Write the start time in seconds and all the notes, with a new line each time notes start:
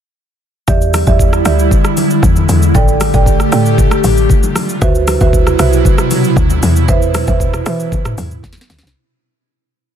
0.68 E2 D3 G3 E4 G4 D5 E5, kick, low conga, shaker
0.81 shaker
0.94 cross-stick, open hi-hat, high conga, shaker
1.07 E2 G4 D5 E5, kick, shaker
1.19 kick, shaker
1.33 cross-stick, shaker
1.45 D2 G4 D5 E5, cross-stick, open hi-hat, shaker
1.59 shaker
1.71 kick, low conga, shaker
1.84 cross-stick, shaker
1.97 open hi-hat, high conga, shaker
2.10 shaker
2.22 E2 G#3, kick, low conga, shaker
2.36 high conga, shaker
2.49 E2, open hi-hat, high conga, shaker
2.62 shaker
2.75 A1 A3 G4 A4 D5 G5, kick, low conga, shaker
2.88 shaker
3.01 cross-stick, open hi-hat, high conga, shaker
3.14 A1 A4 D5 G5, kick, shaker
3.26 kick, shaker
3.40 cross-stick, shaker
3.52 A2 A4 D5 G5, cross-stick, open hi-hat, shaker
3.66 shaker
3.78 kick, low conga, shaker
3.91 cross-stick, shaker
4.04 A1, open hi-hat, high conga, shaker
4.17 shaker
4.29 C#3 G3 F4, kick, low conga, shaker
4.43 high conga, shaker
4.56 cross-stick, open hi-hat, high conga, shaker
4.69 shaker
4.81 D2 B2 C3 F#3 E4 F#4 B4 C5 E5, kick, low conga, shaker
4.95 shaker
5.08 cross-stick, open hi-hat, high conga, shaker
5.21 D2 F#4 B4 C5 E5, kick, shaker
5.33 kick, shaker
5.47 cross-stick, shaker
5.59 C2 F#4 B4 C5 E5, cross-stick, open hi-hat, shaker
5.73 shaker
5.85 kick, low conga, shaker
5.98 cross-stick, shaker
6.11 open hi-hat, high conga, shaker
6.24 shaker
6.36 D2, kick, low conga, shaker
6.50 high conga, shaker
6.63 E2 B2, open hi-hat, high conga, shaker
6.76 shaker
6.88 E2 B4 C5 E5, kick, low conga, shaker
7.02 shaker
7.14 cross-stick, open hi-hat, high conga, shaker
7.27 E2 B4 C5 E5, kick, shaker
7.40 kick, shaker
7.54 cross-stick, shaker
7.66 E3 B4 C5 E5, cross-stick, open hi-hat, shaker
7.80 shaker
7.92 kick, low conga, shaker
8.05 cross-stick, mid tom, shaker
8.18 E2, open hi-hat, high conga, shaker
8.31 mid tom, shaker
8.43 E2, kick, snare, low conga, shaker
8.53 snare
8.57 high conga, shaker
8.61 snare
8.70 D2, snare, open hi-hat, high conga, shaker
8.79 snare
8.83 C2, snare, shaker